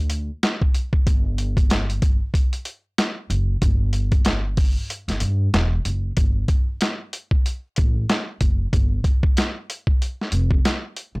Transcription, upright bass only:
0, 0, Header, 1, 2, 480
1, 0, Start_track
1, 0, Tempo, 638298
1, 801, Time_signature, 4, 2, 24, 8
1, 8422, End_track
2, 0, Start_track
2, 0, Title_t, "Upright bass"
2, 0, Program_c, 0, 32
2, 0, Note_on_c, 0, 38, 102
2, 210, Note_off_c, 0, 38, 0
2, 805, Note_on_c, 0, 31, 92
2, 1633, Note_off_c, 0, 31, 0
2, 2480, Note_on_c, 0, 30, 90
2, 2666, Note_off_c, 0, 30, 0
2, 2721, Note_on_c, 0, 31, 100
2, 3551, Note_off_c, 0, 31, 0
2, 3821, Note_on_c, 0, 31, 78
2, 3898, Note_off_c, 0, 31, 0
2, 3920, Note_on_c, 0, 43, 94
2, 4106, Note_off_c, 0, 43, 0
2, 4163, Note_on_c, 0, 28, 97
2, 4347, Note_off_c, 0, 28, 0
2, 4402, Note_on_c, 0, 30, 90
2, 4587, Note_off_c, 0, 30, 0
2, 4641, Note_on_c, 0, 31, 93
2, 4826, Note_off_c, 0, 31, 0
2, 5853, Note_on_c, 0, 33, 82
2, 6033, Note_off_c, 0, 33, 0
2, 6324, Note_on_c, 0, 30, 79
2, 6508, Note_off_c, 0, 30, 0
2, 6567, Note_on_c, 0, 31, 93
2, 6750, Note_off_c, 0, 31, 0
2, 7761, Note_on_c, 0, 29, 91
2, 7946, Note_off_c, 0, 29, 0
2, 8384, Note_on_c, 0, 35, 84
2, 8422, Note_off_c, 0, 35, 0
2, 8422, End_track
0, 0, End_of_file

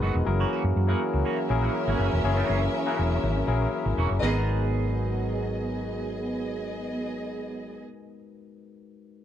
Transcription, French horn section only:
0, 0, Header, 1, 2, 480
1, 0, Start_track
1, 0, Key_signature, 5, "minor"
1, 0, Tempo, 494641
1, 259, Time_signature, 4, 2, 24, 8
1, 8973, End_track
2, 0, Start_track
2, 0, Title_t, "French horn section"
2, 0, Program_c, 0, 60
2, 0, Note_on_c, 0, 47, 76
2, 0, Note_on_c, 0, 56, 78
2, 0, Note_on_c, 0, 66, 80
2, 220, Note_off_c, 0, 66, 0
2, 221, Note_off_c, 0, 56, 0
2, 222, Note_off_c, 0, 47, 0
2, 254, Note_on_c, 0, 52, 77
2, 256, Note_on_c, 0, 66, 89
2, 259, Note_on_c, 0, 58, 77
2, 2156, Note_off_c, 0, 66, 0
2, 2171, Note_on_c, 0, 64, 89
2, 3943, Note_off_c, 0, 52, 0
2, 3943, Note_off_c, 0, 58, 0
2, 3943, Note_off_c, 0, 64, 0
2, 4108, Note_on_c, 0, 54, 77
2, 4108, Note_on_c, 0, 59, 66
2, 4109, Note_on_c, 0, 68, 81
2, 7605, Note_off_c, 0, 54, 0
2, 7606, Note_off_c, 0, 59, 0
2, 7607, Note_off_c, 0, 68, 0
2, 8973, End_track
0, 0, End_of_file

